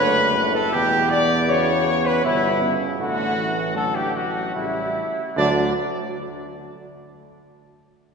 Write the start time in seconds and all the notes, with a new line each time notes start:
Already playing: B4
0.00 F#1 D3 A3
0.36 A2
0.55 A4
0.72 E2 B2 B3 G4
1.10 D5
1.48 C#3 C#5
2.05 B4
2.24 G1 B2 B3 E4
2.62 C#3
2.99 A1 D3 A3 F#4
3.37 E3
3.75 D3 F#3 A4
3.95 G4
4.15 F#4
4.54 A1 C#3 G3 E4
5.36 D2 D3 F#3 D4 D5